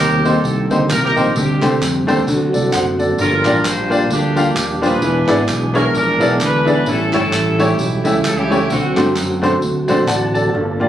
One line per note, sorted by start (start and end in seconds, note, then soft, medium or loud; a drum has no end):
0.00 0.37 D#2 loud
0.00 0.21 C3 medium
0.00 1.32 D#3 medium
0.00 1.32 G3 medium
0.00 1.32 A#3 medium
0.00 1.32 C4 medium
0.00 0.24 D#4 medium
0.00 0.67 G4 medium
0.00 1.34 G4 medium
0.00 0.22 A#4 loud
0.24 0.35 A#3 medium
0.24 0.35 C4 medium
0.24 0.36 D#4 medium
0.24 1.02 D#4 medium
0.24 0.36 G4 medium
0.24 0.72 A4 medium
0.24 0.36 C5 medium
0.24 tambourine medium
0.44 0.66 C2 medium
0.44 tambourine medium
0.70 0.92 D2 medium
0.70 0.81 A#3 medium
0.70 0.81 C4 medium
0.70 0.81 D#4 medium
0.70 0.82 G4 medium
0.70 0.82 C5 medium
0.70 tambourine medium
0.90 1.13 C2 loud
0.90 1.02 A#4 loud
0.90 clap loud
0.90 tambourine loud
1.03 1.34 D#4 medium
1.03 1.34 G4 medium
1.03 1.34 A#4 loud
1.16 1.33 A#1 medium
1.16 1.27 A#3 medium
1.16 1.27 C4 medium
1.16 1.27 D#4 medium
1.16 1.27 G4 medium
1.16 1.27 C5 medium
1.16 tambourine soft
1.35 1.58 D2 loud
1.35 2.25 D3 medium
1.35 2.04 D3 medium
1.35 2.25 G3 medium
1.35 2.26 A3 medium
1.35 2.26 C4 medium
1.35 2.24 C4 medium
1.35 1.82 G4 medium
1.35 2.26 G4 medium
1.35 tambourine medium
1.62 1.79 C2 medium
1.62 1.73 A3 medium
1.62 1.73 C4 medium
1.62 1.73 D4 medium
1.62 1.73 G4 medium
1.62 1.73 C5 medium
1.62 clap medium
1.62 tambourine medium
1.81 2.04 F2 loud
1.81 clap medium
1.81 tambourine medium
2.07 2.25 D#2 medium
2.07 2.18 A3 medium
2.07 2.19 C4 medium
2.07 2.19 D4 medium
2.07 2.19 G4 medium
2.07 2.19 C5 loud
2.07 tambourine medium
2.26 2.50 D2 loud
2.26 2.95 D3 medium
2.26 3.17 D3 medium
2.26 3.17 F#3 medium
2.26 3.17 A3 medium
2.26 3.17 C4 medium
2.26 2.34 F4 medium
2.26 tambourine medium
2.33 3.20 F#4 medium
2.53 2.70 C2 medium
2.53 2.73 A4 medium
2.53 2.72 D5 medium
2.53 tambourine medium
2.72 3.12 F#1 medium
2.72 2.98 C5 medium
2.72 2.98 F#5 medium
2.72 clap loud
2.72 tambourine loud
2.99 3.43 A4 medium
2.99 3.43 D5 medium
2.99 tambourine soft
3.18 3.41 G1 loud
3.18 3.87 G2 medium
3.18 4.99 F3 medium
3.18 4.99 G3 medium
3.18 4.99 A#3 medium
3.18 4.07 D4 medium
3.18 4.99 D4 medium
3.18 3.63 F4 medium
3.18 4.99 G4 medium
3.18 3.43 A#4 loud
3.18 tambourine medium
3.44 3.62 A1 medium
3.44 3.56 A#3 medium
3.44 3.56 D4 medium
3.44 3.56 F4 medium
3.44 3.56 G4 medium
3.44 3.63 A#4 loud
3.44 3.57 D5 medium
3.44 clap medium
3.44 tambourine medium
3.64 4.04 A#1 medium
3.64 4.52 F4 medium
3.64 4.11 C5 loud
3.64 clap loud
3.64 tambourine loud
3.90 4.01 A#3 medium
3.90 4.01 D4 medium
3.90 4.02 F4 medium
3.90 4.02 G4 medium
3.90 4.02 D5 medium
3.90 tambourine medium
4.10 4.50 D2 medium
4.10 4.99 A#3 medium
4.10 4.83 D4 medium
4.10 4.80 G4 loud
4.10 tambourine medium
4.36 4.47 A#3 medium
4.36 4.47 D4 medium
4.36 4.48 F4 medium
4.36 4.48 G4 medium
4.36 4.48 F5 medium
4.36 tambourine medium
4.56 4.95 D#1 loud
4.56 clap loud
4.56 tambourine loud
4.82 4.93 A#3 medium
4.82 4.93 D4 medium
4.82 5.71 D4 medium
4.82 4.93 F4 medium
4.82 4.94 G4 medium
4.82 5.71 G#4 medium
4.82 5.49 B4 loud
4.82 4.94 C5 medium
4.82 tambourine soft
5.02 5.25 E1 loud
5.02 5.71 E3 medium
5.02 6.83 E3 medium
5.02 6.83 G#3 medium
5.02 6.83 B3 medium
5.02 6.83 D4 medium
5.02 6.83 G#4 medium
5.02 tambourine medium
5.28 5.46 G#1 medium
5.28 5.39 B3 medium
5.28 5.39 D4 medium
5.28 5.40 E4 medium
5.28 5.40 G#4 medium
5.28 5.40 D5 medium
5.28 clap medium
5.28 tambourine medium
5.49 5.88 B1 loud
5.49 clap medium
5.49 tambourine medium
5.74 5.85 B3 medium
5.74 5.85 D4 medium
5.74 5.86 E4 medium
5.74 5.86 G#4 medium
5.74 5.93 A#4 medium
5.74 5.86 C#5 medium
5.74 tambourine medium
5.94 6.17 A#1 loud
5.94 6.83 D4 medium
5.94 6.38 A#4 loud
5.94 tambourine medium
6.20 6.38 B1 medium
6.20 6.31 B3 medium
6.20 6.31 D4 medium
6.20 6.31 E4 medium
6.20 6.32 G#4 medium
6.20 6.32 D5 medium
6.20 tambourine medium
6.41 6.80 D2 medium
6.41 6.68 B4 loud
6.41 clap loud
6.41 tambourine loud
6.65 6.77 B3 medium
6.65 6.77 D4 medium
6.65 6.77 E4 medium
6.65 6.78 G#4 medium
6.65 6.86 B4 loud
6.65 6.78 D5 medium
6.65 tambourine soft
6.86 7.09 A1 loud
6.86 7.55 A2 medium
6.86 8.67 E3 medium
6.86 8.67 G3 medium
6.86 8.67 A3 medium
6.86 7.12 C#4 medium
6.86 8.67 C#4 medium
6.86 7.12 E4 medium
6.86 8.67 G4 medium
6.86 7.13 A4 loud
6.86 tambourine medium
7.13 7.30 G1 medium
7.13 7.24 A3 medium
7.13 7.58 C#4 medium
7.13 7.24 C#4 medium
7.13 7.59 E4 medium
7.13 7.24 E4 medium
7.13 7.24 G4 medium
7.13 7.56 A4 loud
7.13 7.24 C#5 medium
7.13 clap medium
7.13 tambourine medium
7.33 7.72 A1 medium
7.33 clap loud
7.33 tambourine loud
7.59 7.69 A3 medium
7.59 7.70 C#4 medium
7.59 8.36 C#4 medium
7.59 7.70 E4 medium
7.59 8.36 E4 medium
7.59 7.70 G4 medium
7.59 8.02 G4 medium
7.59 7.70 C#5 medium
7.59 tambourine medium
7.79 8.01 B1 loud
7.79 tambourine medium
8.04 8.21 C#2 medium
8.04 8.15 A3 medium
8.04 8.16 C#4 medium
8.04 8.16 E4 medium
8.04 8.16 G4 medium
8.04 8.16 E5 medium
8.04 tambourine medium
8.24 8.63 C#2 loud
8.24 8.37 A4 loud
8.24 clap loud
8.24 tambourine loud
8.37 8.68 C#4 medium
8.37 8.68 E4 medium
8.37 8.70 G4 loud
8.50 8.61 A3 medium
8.50 8.61 C#4 medium
8.50 8.62 E4 medium
8.50 8.62 G4 medium
8.50 8.62 C#5 medium
8.50 tambourine soft
8.70 8.92 D2 loud
8.70 10.50 D3 medium
8.70 9.39 D3 medium
8.70 10.50 F#3 medium
8.70 10.50 A3 medium
8.70 9.58 A3 medium
8.70 10.50 C4 medium
8.70 9.58 C4 medium
8.70 8.76 F4 medium
8.70 9.13 F#4 medium
8.70 tambourine medium
8.76 10.53 F#4 medium
8.96 9.13 G2 medium
8.96 9.07 A3 medium
8.96 9.07 C4 medium
8.96 9.08 D4 medium
8.96 9.08 F#4 medium
8.96 9.08 C5 medium
8.96 clap medium
8.96 tambourine medium
9.16 9.55 F#2 loud
9.16 clap medium
9.16 tambourine loud
9.42 9.53 A3 medium
9.42 9.53 C4 medium
9.42 9.53 D4 medium
9.42 9.53 F#4 medium
9.42 9.54 C5 loud
9.42 tambourine medium
9.62 9.85 D2 loud
9.62 tambourine medium
9.88 10.06 A#1 loud
9.88 9.99 A3 medium
9.88 9.99 C4 medium
9.88 9.99 D4 medium
9.88 10.00 F#4 medium
9.88 10.00 C5 medium
9.88 10.07 D5 medium
9.88 tambourine medium
10.08 10.47 A1 medium
10.08 10.33 D5 medium
10.08 10.32 F#5 medium
10.08 10.33 A5 medium
10.08 10.51 A5 medium
10.08 clap loud
10.08 tambourine loud
10.34 10.55 G4 medium
10.34 10.79 A4 medium
10.34 10.78 D5 medium
10.34 10.53 A5 medium
10.34 tambourine soft
10.54 10.77 G1 medium
10.54 10.89 G2 medium
10.54 10.87 A3 soft
10.54 10.87 A#3 soft
10.54 10.81 D4 medium
10.54 10.82 F4 medium
10.54 10.71 A4 loud
10.73 10.81 A4 medium
10.80 10.89 A1 medium
10.80 10.89 A#3 medium
10.80 10.89 D4 medium
10.80 10.89 F4 medium
10.80 10.89 G4 medium
10.80 10.89 A#4 loud
10.80 10.89 D5 medium